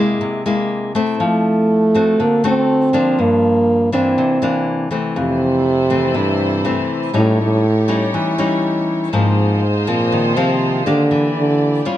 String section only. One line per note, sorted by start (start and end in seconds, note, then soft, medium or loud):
5.16 7.12 A3 medium
5.16 7.12 E4 medium
5.16 7.12 A4 medium
5.16 7.12 C5 medium
7.15 9.11 A3 medium
7.15 9.11 D#4 medium
7.15 9.11 G4 medium
7.15 9.11 C#5 medium
9.12 11.97 A#3 medium
9.12 11.09 F4 medium
9.12 11.09 G#4 medium
9.12 11.09 C5 medium
11.10 11.97 E4 medium
11.10 11.97 G4 medium
11.10 11.97 D5 medium